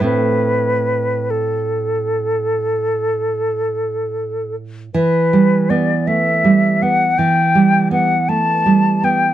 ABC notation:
X:1
M:12/8
L:1/8
Q:3/8=51
K:Am
V:1 name="Flute"
B3 A8 z | [K:Em] B2 d e2 f g2 f a2 g |]
V:2 name="Nylon-string guitar"
[A,,A,C]12 | [K:Em] E, G, B, A, G, B, E, G, B, A, G, B, |]